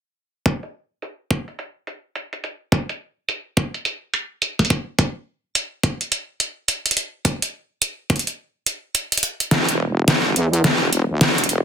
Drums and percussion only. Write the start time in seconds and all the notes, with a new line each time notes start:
0.46 kick, closed hi-hat
0.63 closed hi-hat
1.02 closed hi-hat
1.30 kick, closed hi-hat
1.48 closed hi-hat
1.59 closed hi-hat
1.87 closed hi-hat
2.15 closed hi-hat
2.33 closed hi-hat
2.44 closed hi-hat
2.72 kick, closed hi-hat
2.89 closed hi-hat
3.29 closed hi-hat
3.57 kick, closed hi-hat
3.74 closed hi-hat
3.85 closed hi-hat
4.14 closed hi-hat
4.42 closed hi-hat
4.59 kick, closed hi-hat
4.65 closed hi-hat
4.70 kick, closed hi-hat
4.99 kick, closed hi-hat
5.55 closed hi-hat
5.83 kick, closed hi-hat
6.01 closed hi-hat
6.12 closed hi-hat
6.40 closed hi-hat
6.68 closed hi-hat
6.86 closed hi-hat
6.91 closed hi-hat
6.97 closed hi-hat
7.25 kick, closed hi-hat
7.42 closed hi-hat
7.82 closed hi-hat
8.10 kick, closed hi-hat
8.16 closed hi-hat
8.19 closed hi-hat
8.27 closed hi-hat
8.66 closed hi-hat
8.95 closed hi-hat
9.12 closed hi-hat
9.17 closed hi-hat
9.23 closed hi-hat
9.40 closed hi-hat
9.51 kick, snare, closed hi-hat
9.69 closed hi-hat
10.08 kick, snare, closed hi-hat
10.36 closed hi-hat
10.53 closed hi-hat
10.64 kick, snare, closed hi-hat
10.93 closed hi-hat
11.21 kick, snare, closed hi-hat
11.38 closed hi-hat
11.44 closed hi-hat
11.49 closed hi-hat